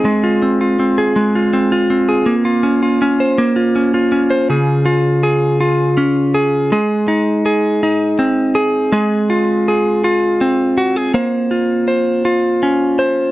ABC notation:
X:1
M:6/8
L:1/16
Q:3/8=54
K:Db
V:1 name="Clean electric guitar"
A, F C F C A A, F C F C A | B, F D F D c B, F D F D c | [D,A]2 F2 A2 F2 D2 A2 | [A,A]2 E2 A2 E2 C2 A2 |
[A,A]2 F2 A2 F2 C2 G A | [B,c]2 F2 c2 F2 D2 c2 |]